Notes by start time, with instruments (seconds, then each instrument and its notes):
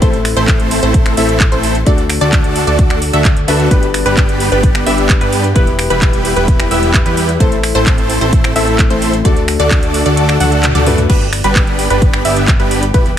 Already playing: analog synth pad E4
0.01 analog synth bass A1, grand piano A3 C4 E4 A4, analog synth pad A3 C4, supersaw synth A3 C4 E4 A4 C5, synth pluck C5, kick, closed hi-hat
0.13 closed hi-hat
0.25 finger snap, open hi-hat
0.36 analog synth bass A1, supersaw synth A3 C4 E4 A4 C5, synth pluck C5, closed hi-hat
0.48 kick, clap, closed hi-hat
0.60 closed hi-hat
0.71 open hi-hat
0.83 analog synth bass A1, supersaw synth A3 C4 E4 A4 C5, synth pluck C5, closed hi-hat
0.94 kick, closed hi-hat
1.06 finger snap, closed hi-hat
1.16 analog synth bass A1, grand piano A3 C4 E4 A4, supersaw synth A3 C4 E4 A4 E5, synth pluck E5, open hi-hat
1.29 closed hi-hat
1.40 kick, clap, closed hi-hat
1.52 analog synth bass A1, supersaw synth A3 C4 E4 A4 C5, synth pluck C5, closed hi-hat
1.63 open hi-hat
1.75 closed hi-hat
1.85 analog synth bass D2, analog synth pad D3 D4 F#4 A4, grand piano A3 D4 F#4 A4, supersaw synth A3 D4 F#4 A4 D5, synth pluck D5, kick, closed hi-hat
1.98 closed hi-hat
2.10 finger snap, open hi-hat
2.21 analog synth bass D2, supersaw synth A3 D4 F#4 A4 D5, synth pluck D5, closed hi-hat
2.32 kick, clap, closed hi-hat
2.44 closed hi-hat
2.56 open hi-hat
2.67 analog synth bass D2, supersaw synth A3 D4 F#4 A4 D5, synth pluck D5, closed hi-hat
2.79 kick, closed hi-hat
2.90 finger snap, closed hi-hat
3.02 open hi-hat
3.13 analog synth bass D2, supersaw synth A3 D4 F#4 A4 E5, synth pluck E5, closed hi-hat
3.25 kick, clap, closed hi-hat
3.37 closed hi-hat
3.47 analog synth bass D2, grand piano A3 D4 F#4 B4, supersaw synth A3 D4 F#4 A4 E5, synth pluck E5, open hi-hat
3.60 closed hi-hat
3.70 analog synth bass G1, supersaw synth G3 B3 D4 G4 B4, grand piano B3 D4 G4 B4, analog synth pad B3 D4 G4, synth pluck B4, kick, closed hi-hat
3.83 closed hi-hat
3.94 finger snap, open hi-hat
4.06 analog synth bass G1, supersaw synth G3 B3 D4 G4 B4, synth pluck B4, closed hi-hat
4.17 kick, clap, closed hi-hat
4.29 closed hi-hat
4.40 open hi-hat
4.52 analog synth bass G1, supersaw synth G3 B3 D4 G4 B4, synth pluck B4, closed hi-hat
4.63 kick, closed hi-hat
4.75 finger snap, closed hi-hat
4.85 analog synth bass G1, supersaw synth G3 B3 D4 G4 E5, grand piano B3 D4 G4 B4, synth pluck E5, open hi-hat
4.98 closed hi-hat
5.09 kick, clap, closed hi-hat
5.21 analog synth bass G2, supersaw synth G3 B3 D4 G4 B4, synth pluck B4, closed hi-hat
5.33 open hi-hat
5.44 closed hi-hat
5.54 analog synth bass E1, analog synth pad E3 E4 B4, supersaw synth G3 B3 E4 G4 B4, grand piano B3 E4 G4 B4, synth pluck B4, kick, closed hi-hat
5.67 closed hi-hat
5.79 finger snap, open hi-hat
5.90 analog synth bass E1, supersaw synth G3 B3 E4 G4 B4, synth pluck B4, closed hi-hat
6.02 kick, clap, closed hi-hat
6.13 closed hi-hat
6.25 open hi-hat
6.36 analog synth bass E1, supersaw synth G3 B3 E4 G4 B4, synth pluck B4, closed hi-hat
6.48 kick, closed hi-hat
6.60 finger snap, closed hi-hat
6.70 analog synth bass E1, supersaw synth G3 B3 E4 G4 E5, grand piano B3 E4 G4 B4, synth pluck E5, open hi-hat
6.83 closed hi-hat
6.94 kick, clap, closed hi-hat
7.06 analog synth bass E2, supersaw synth G3 B3 E4 G4 B4, synth pluck B4, closed hi-hat
7.17 open hi-hat
7.29 closed hi-hat
7.39 analog synth bass A1, grand piano A3 C4 E4 A4, analog synth pad A3 C4, supersaw synth A3 C4 E4 A4 C5, synth pluck C5, kick, closed hi-hat
7.52 closed hi-hat
7.63 finger snap, open hi-hat
7.75 analog synth bass A1, supersaw synth A3 C4 E4 A4 C5, synth pluck C5, closed hi-hat
7.86 kick, clap, closed hi-hat
7.98 closed hi-hat
8.10 open hi-hat
8.21 analog synth bass A1, supersaw synth A3 C4 E4 A4 C5, synth pluck C5, closed hi-hat
8.33 kick, closed hi-hat
8.44 finger snap, closed hi-hat
8.54 analog synth bass A1, grand piano A3 C4 E4 A4, supersaw synth A3 C4 E4 A4 E5, synth pluck E5, open hi-hat
8.67 closed hi-hat
8.79 kick, clap, closed hi-hat
8.90 analog synth bass A1, supersaw synth A3 C4 E4 A4 C5, synth pluck C5, closed hi-hat
9.02 open hi-hat
9.13 closed hi-hat
9.24 analog synth bass D2, analog synth pad D3 D4 F#4 A4, grand piano A3 D4 F#4 A4, supersaw synth A3 D4 F#4 A4 D5, synth pluck D5, kick, closed hi-hat
9.37 closed hi-hat
9.48 finger snap, open hi-hat
9.60 analog synth bass D2, supersaw synth A3 D4 F#4 A4 D5, synth pluck D5, closed hi-hat
9.71 kick, clap, closed hi-hat
9.83 closed hi-hat
9.94 open hi-hat
10.06 analog synth bass D2, supersaw synth A3 D4 F#4 A4 D5, synth pluck D5, closed hi-hat
10.17 closed hi-hat
10.29 finger snap, closed hi-hat
10.40 analog synth bass D2, supersaw synth A3 D4 F#4 A4 F#5, synth pluck F#5, open hi-hat, high tom
10.52 closed hi-hat
10.63 clap, closed hi-hat, mid tom
10.75 analog synth bass D2, supersaw synth A3 D4 F#4 A4 D5, synth pluck D5, closed hi-hat, mid tom
10.86 grand piano A3 D4 F#4 B4, mid tom, open hi-hat
10.98 closed hi-hat, mid tom
11.10 analog synth bass G1, supersaw synth G3 B3 D4 G4 B4, analog synth pad B3 D4 G4, synth pluck B4, kick, closed hi-hat, crash
11.21 closed hi-hat
11.33 finger snap, open hi-hat
11.44 analog synth bass G1, supersaw synth G3 B3 D4 G4 B4, synth pluck B4, closed hi-hat
11.56 kick, clap, closed hi-hat
11.67 closed hi-hat
11.79 open hi-hat
11.90 analog synth bass G1, supersaw synth G3 B3 D4 G4 B4, synth pluck B4, closed hi-hat
12.02 kick, closed hi-hat
12.13 finger snap, closed hi-hat
12.25 analog synth bass G1, supersaw synth G3 B3 D4 G4 E5, synth pluck E5, open hi-hat
12.36 closed hi-hat
12.48 kick, clap, closed hi-hat
12.60 analog synth bass G1, supersaw synth G3 B3 D4 G4 B4, synth pluck B4, closed hi-hat
12.71 open hi-hat
12.83 closed hi-hat
12.94 analog synth bass E1, analog synth pad E3 E4 B4, supersaw synth G3 B3 E4 G4 B4, synth pluck B4, kick, closed hi-hat
13.06 closed hi-hat